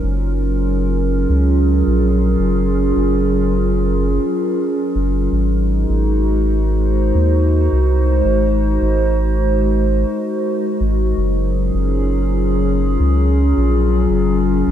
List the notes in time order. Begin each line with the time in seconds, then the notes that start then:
Already playing: F#3 C#4 D#4 F4 A#4 C5
0.04 F#1
0.24 G#4
1.30 C#2
1.87 A#1
2.39 F#1
2.97 F#1
4.96 F#1
5.32 G#1 G#3
5.37 D#4
5.49 F#4
5.90 G#1
6.42 C5
7.15 D#2
7.72 C2
8.25 G#1
8.82 G#1
10.81 G#1
11.17 F#1 F#3
11.31 G#4
11.45 C#4 F4
11.74 F#1
13.00 C#2
13.57 A#1
14.10 F#1
14.67 F#1